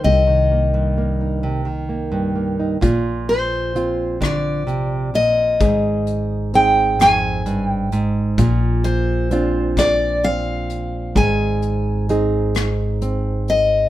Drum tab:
HH |------|xxxxxx|xxxxxx|xxxxxx|
SD |------|---r--|---r--|---r--|
BD |------|o--o--|o-----|o--o--|

HH |xxxxxx|
SD |---r--|
BD |o-----|